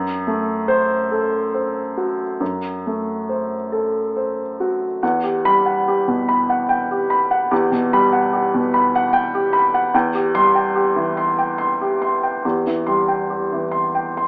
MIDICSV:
0, 0, Header, 1, 2, 480
1, 0, Start_track
1, 0, Key_signature, 1, "minor"
1, 0, Tempo, 836820
1, 882, Tempo, 864553
1, 1364, Time_signature, 3, 2, 24, 8
1, 3282, Tempo, 815217
1, 6162, Tempo, 855920
1, 8138, End_track
2, 0, Start_track
2, 0, Title_t, "Grand piano"
2, 0, Program_c, 0, 0
2, 0, Note_on_c, 0, 42, 51
2, 27, Control_c, 0, 64, 127
2, 155, Note_on_c, 0, 57, 40
2, 391, Note_on_c, 0, 72, 54
2, 540, Note_off_c, 0, 57, 0
2, 639, Note_on_c, 0, 69, 37
2, 781, Note_off_c, 0, 72, 0
2, 885, Note_on_c, 0, 72, 38
2, 1025, Note_off_c, 0, 69, 0
2, 1124, Note_on_c, 0, 66, 32
2, 1267, Note_off_c, 0, 72, 0
2, 1338, Note_off_c, 0, 42, 0
2, 1363, Note_on_c, 0, 42, 36
2, 1375, Control_c, 0, 64, 0
2, 1470, Control_c, 0, 64, 127
2, 1512, Note_off_c, 0, 66, 0
2, 1619, Note_on_c, 0, 57, 27
2, 1857, Note_on_c, 0, 72, 29
2, 2001, Note_off_c, 0, 57, 0
2, 2095, Note_on_c, 0, 69, 27
2, 2240, Note_off_c, 0, 72, 0
2, 2341, Note_on_c, 0, 72, 27
2, 2479, Note_off_c, 0, 69, 0
2, 2584, Note_on_c, 0, 66, 30
2, 2724, Note_off_c, 0, 72, 0
2, 2792, Note_off_c, 0, 42, 0
2, 2819, Note_off_c, 0, 66, 0
2, 2819, Note_on_c, 0, 40, 44
2, 2820, Note_on_c, 0, 78, 38
2, 2825, Control_c, 0, 64, 0
2, 2907, Control_c, 0, 64, 127
2, 2935, Note_on_c, 0, 67, 36
2, 3005, Note_off_c, 0, 78, 0
2, 3053, Note_on_c, 0, 55, 37
2, 3056, Note_on_c, 0, 83, 55
2, 3121, Note_off_c, 0, 67, 0
2, 3170, Note_on_c, 0, 78, 32
2, 3239, Note_off_c, 0, 83, 0
2, 3292, Note_on_c, 0, 67, 39
2, 3357, Note_off_c, 0, 78, 0
2, 3409, Note_on_c, 0, 47, 36
2, 3431, Note_off_c, 0, 55, 0
2, 3483, Note_off_c, 0, 67, 0
2, 3532, Note_on_c, 0, 83, 41
2, 3602, Note_off_c, 0, 47, 0
2, 3656, Note_on_c, 0, 78, 37
2, 3725, Note_off_c, 0, 83, 0
2, 3771, Note_on_c, 0, 79, 43
2, 3847, Note_off_c, 0, 78, 0
2, 3901, Note_on_c, 0, 67, 40
2, 3965, Note_off_c, 0, 79, 0
2, 4012, Note_on_c, 0, 83, 43
2, 4090, Note_off_c, 0, 67, 0
2, 4134, Note_on_c, 0, 78, 40
2, 4206, Note_off_c, 0, 83, 0
2, 4233, Note_off_c, 0, 40, 0
2, 4255, Note_on_c, 0, 40, 51
2, 4255, Note_on_c, 0, 67, 47
2, 4264, Control_c, 0, 64, 0
2, 4326, Note_off_c, 0, 78, 0
2, 4369, Control_c, 0, 64, 127
2, 4374, Note_on_c, 0, 47, 43
2, 4447, Note_off_c, 0, 67, 0
2, 4497, Note_on_c, 0, 55, 43
2, 4502, Note_on_c, 0, 83, 49
2, 4566, Note_off_c, 0, 47, 0
2, 4616, Note_on_c, 0, 78, 42
2, 4690, Note_off_c, 0, 83, 0
2, 4736, Note_on_c, 0, 67, 46
2, 4806, Note_off_c, 0, 78, 0
2, 4861, Note_on_c, 0, 47, 45
2, 4879, Note_off_c, 0, 55, 0
2, 4926, Note_off_c, 0, 67, 0
2, 4977, Note_on_c, 0, 83, 47
2, 5047, Note_off_c, 0, 47, 0
2, 5103, Note_on_c, 0, 78, 48
2, 5164, Note_off_c, 0, 83, 0
2, 5207, Note_on_c, 0, 79, 50
2, 5285, Note_off_c, 0, 78, 0
2, 5334, Note_on_c, 0, 67, 49
2, 5396, Note_off_c, 0, 79, 0
2, 5442, Note_on_c, 0, 83, 48
2, 5518, Note_off_c, 0, 67, 0
2, 5568, Note_on_c, 0, 78, 45
2, 5632, Note_off_c, 0, 83, 0
2, 5657, Note_off_c, 0, 40, 0
2, 5683, Note_off_c, 0, 78, 0
2, 5684, Note_on_c, 0, 40, 53
2, 5688, Note_on_c, 0, 79, 46
2, 5691, Control_c, 0, 64, 0
2, 5783, Control_c, 0, 64, 127
2, 5807, Note_on_c, 0, 67, 48
2, 5876, Note_off_c, 0, 79, 0
2, 5923, Note_on_c, 0, 55, 46
2, 5924, Note_on_c, 0, 84, 62
2, 5996, Note_off_c, 0, 67, 0
2, 6044, Note_on_c, 0, 79, 41
2, 6115, Note_off_c, 0, 84, 0
2, 6163, Note_on_c, 0, 67, 46
2, 6232, Note_off_c, 0, 79, 0
2, 6280, Note_on_c, 0, 52, 44
2, 6302, Note_off_c, 0, 55, 0
2, 6348, Note_off_c, 0, 67, 0
2, 6397, Note_on_c, 0, 84, 41
2, 6466, Note_off_c, 0, 52, 0
2, 6517, Note_on_c, 0, 79, 39
2, 6584, Note_off_c, 0, 84, 0
2, 6628, Note_on_c, 0, 84, 44
2, 6704, Note_off_c, 0, 79, 0
2, 6758, Note_on_c, 0, 67, 40
2, 6820, Note_off_c, 0, 84, 0
2, 6872, Note_on_c, 0, 84, 41
2, 6944, Note_off_c, 0, 67, 0
2, 6991, Note_on_c, 0, 79, 34
2, 7062, Note_off_c, 0, 84, 0
2, 7088, Note_off_c, 0, 40, 0
2, 7113, Note_on_c, 0, 40, 43
2, 7116, Note_on_c, 0, 67, 36
2, 7119, Control_c, 0, 64, 0
2, 7183, Note_off_c, 0, 79, 0
2, 7224, Control_c, 0, 64, 127
2, 7235, Note_on_c, 0, 52, 34
2, 7306, Note_off_c, 0, 67, 0
2, 7348, Note_on_c, 0, 84, 37
2, 7351, Note_on_c, 0, 55, 33
2, 7426, Note_off_c, 0, 52, 0
2, 7468, Note_on_c, 0, 79, 33
2, 7543, Note_off_c, 0, 84, 0
2, 7590, Note_on_c, 0, 67, 34
2, 7665, Note_off_c, 0, 79, 0
2, 7716, Note_on_c, 0, 52, 32
2, 7740, Note_off_c, 0, 55, 0
2, 7787, Note_off_c, 0, 67, 0
2, 7824, Note_on_c, 0, 84, 35
2, 7911, Note_off_c, 0, 52, 0
2, 7954, Note_on_c, 0, 79, 33
2, 8025, Note_off_c, 0, 84, 0
2, 8080, Note_on_c, 0, 84, 40
2, 8138, Note_off_c, 0, 40, 0
2, 8138, Note_off_c, 0, 79, 0
2, 8138, Note_off_c, 0, 84, 0
2, 8138, End_track
0, 0, End_of_file